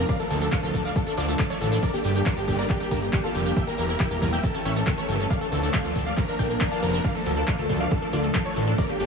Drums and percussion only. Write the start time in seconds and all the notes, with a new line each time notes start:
0.09 kick, closed hi-hat
0.20 closed hi-hat
0.31 open hi-hat
0.41 closed hi-hat
0.52 kick, clap, closed hi-hat
0.63 closed hi-hat
0.74 kick, open hi-hat
0.85 closed hi-hat
0.96 kick, closed hi-hat
1.07 closed hi-hat
1.17 open hi-hat
1.28 closed hi-hat
1.39 kick, clap, closed hi-hat
1.50 closed hi-hat
1.61 open hi-hat
1.72 closed hi-hat
1.83 kick, closed hi-hat
1.93 closed hi-hat
2.04 open hi-hat
2.15 closed hi-hat
2.26 kick, clap, closed hi-hat
2.37 closed hi-hat
2.48 kick, open hi-hat
2.59 closed hi-hat
2.70 kick, clap, closed hi-hat
2.80 closed hi-hat
2.91 kick, open hi-hat
3.02 closed hi-hat
3.13 kick, clap, open hi-hat
3.24 closed hi-hat
3.35 open hi-hat
3.46 closed hi-hat
3.57 kick, closed hi-hat
3.67 closed hi-hat
3.78 open hi-hat
3.89 closed hi-hat
4.00 kick, clap, closed hi-hat
4.11 closed hi-hat
4.22 kick, open hi-hat
4.33 closed hi-hat
4.43 kick, closed hi-hat
4.54 closed hi-hat
4.65 open hi-hat
4.76 closed hi-hat
4.87 kick, clap, closed hi-hat
4.98 closed hi-hat
5.09 open hi-hat
5.20 closed hi-hat
5.30 kick, closed hi-hat
5.41 closed hi-hat
5.52 open hi-hat
5.63 closed hi-hat
5.74 kick, clap, closed hi-hat
5.85 closed hi-hat
5.96 kick, open hi-hat
6.07 closed hi-hat
6.17 kick, clap, closed hi-hat
6.28 closed hi-hat
6.39 kick, open hi-hat
6.50 closed hi-hat
6.61 kick, clap, open hi-hat
6.72 closed hi-hat
6.82 open hi-hat
6.93 closed hi-hat
7.04 kick, closed hi-hat, shaker
7.15 closed hi-hat
7.25 open hi-hat, shaker
7.37 closed hi-hat, shaker
7.48 kick, clap, closed hi-hat, shaker
7.58 closed hi-hat
7.69 kick, open hi-hat, shaker
7.80 closed hi-hat, shaker
7.91 kick, closed hi-hat, shaker
8.02 closed hi-hat
8.13 open hi-hat, shaker
8.23 closed hi-hat, shaker
8.35 kick, clap, closed hi-hat, shaker
8.46 closed hi-hat
8.56 open hi-hat, shaker
8.67 closed hi-hat, shaker
8.78 kick, closed hi-hat, shaker
8.89 closed hi-hat
9.00 open hi-hat, shaker